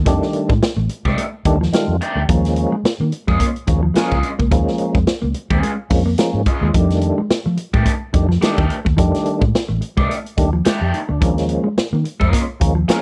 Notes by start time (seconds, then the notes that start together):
0.06 F2 D#3 F3 G3 A3 D4, kick, closed hi-hat
0.22 snare
0.33 muted clean electric guitar stroke, closed hi-hat
0.49 A2 G#3, kick
0.62 snare, closed hi-hat
0.77 A1 A3
0.89 muted clean electric guitar stroke, closed hi-hat
1.05 C2 D#3 G#3 A3 D4 G4, kick
1.18 A3, closed hi-hat
1.45 D#2 D#3 G3 A3 D4, muted clean electric guitar stroke, kick, closed hi-hat
1.61 F3, snare
1.72 D#3 G3 G#3 A3 F4, muted fingered electric bass stroke, snare, closed hi-hat
1.88 F2
2.01 D#3 A3 D4 G4, muted clean electric guitar stroke, closed hi-hat
2.15 D2 A3
2.29 D#2 F3 G#3 A#3 C#4, kick, closed hi-hat
2.45 snare, closed hi-hat
2.56 muted clean electric guitar stroke, closed hi-hat
2.72 G#3
2.84 muted fingered electric bass stroke, snare, closed hi-hat
3.00 D#3 A#3
3.12 muted clean electric guitar stroke, closed hi-hat
3.27 F2 G#3 C#4 F4 G#4, kick
3.40 A#3, kick, closed hi-hat
3.56 closed hi-hat
3.67 D#2 F3 G#3 A#3 C#4, muted clean electric guitar stroke, kick, closed hi-hat
3.83 F3
3.94 F3 G#3 A#3 C#4 F4, snare, closed hi-hat
3.99 G#4
4.11 C#2 G#3 C#4 F4 G#4, kick
4.23 muted clean electric guitar stroke, closed hi-hat
4.39 C#2 A#3, kick
4.51 D#2 F3 G#3 A#3 C#4, kick, closed hi-hat
4.67 snare
4.78 muted clean electric guitar stroke, closed hi-hat
4.95 F2 G#3, kick
5.07 snare, closed hi-hat
5.22 C#2 A#3
5.34 muted clean electric guitar stroke, closed hi-hat
5.50 D#2 G#3 C#4 F4 G#4, kick
5.63 G#3, closed hi-hat
5.90 F2 F3 G#3 A#3 C#4, muted clean electric guitar stroke, kick, open hi-hat
6.06 A#3
6.18 F3 G#3 A#3 C#4, muted fingered electric bass stroke, snare, closed hi-hat
6.34 G#2
6.46 G#3 C#4 F4 G#4, muted clean electric guitar stroke, kick, closed hi-hat
6.61 D#2 G#3
6.74 F2 D#3 F3 G3 A3 D4, kick, closed hi-hat
6.90 snare, closed hi-hat
7.01 muted clean electric guitar stroke, closed hi-hat
7.18 G#3
7.30 muted fingered electric bass stroke, snare, closed hi-hat
7.46 F3 A3
7.57 muted clean electric guitar stroke, closed hi-hat
7.73 A2 D#3 G#3 A3 D4 G4, kick
7.85 A3, kick, closed hi-hat
8.13 F2 D#3 G3 A3 D4, muted clean electric guitar stroke, kick, closed hi-hat
8.29 F3, snare
8.41 D#3 G3 G#3 A3 D4 G4, muted fingered electric bass stroke, snare, closed hi-hat
8.57 D#2 D#3 A3 D4 G4, kick
8.69 muted clean electric guitar stroke, closed hi-hat
8.85 D#2 A3, kick
8.97 F2 D#3 F3 G3 A3 D4, kick, closed hi-hat
9.14 snare, closed hi-hat
9.25 muted clean electric guitar stroke, closed hi-hat
9.41 A2 G#3, kick
9.55 snare, closed hi-hat
9.69 A1 A3
9.81 muted clean electric guitar stroke, closed hi-hat
9.97 C2 D#3 G#3 A3 D4 G4, kick
10.09 A3, closed hi-hat
10.26 closed hi-hat
10.37 D#2 D#3 G3 A3 D4, muted clean electric guitar stroke, kick, closed hi-hat
10.53 F3
10.65 D#3 G#3 A3 D4 G4, muted fingered electric bass stroke, snare, closed hi-hat
10.81 F2 D#3 A3 D4 G4
10.94 D#4, muted clean electric guitar stroke, closed hi-hat
11.09 D2 A3 D4
11.21 D#2 F3 G#3 A#3 C#4, kick, closed hi-hat
11.38 snare, closed hi-hat
11.49 muted clean electric guitar stroke, closed hi-hat
11.64 G#3
11.77 muted fingered electric bass stroke, snare, closed hi-hat
11.93 D#3 A#3
12.04 muted clean electric guitar stroke, closed hi-hat
12.20 F2 G#3 C#4 F4 A#4, kick
12.32 A#3, kick, closed hi-hat
12.60 D#2 F3 G#3 A#3 C#4, muted clean electric guitar stroke, kick, closed hi-hat
12.75 F3
12.88 F3 G#3 A#3 C#4 F4 A#4, muted fingered electric bass stroke, snare, closed hi-hat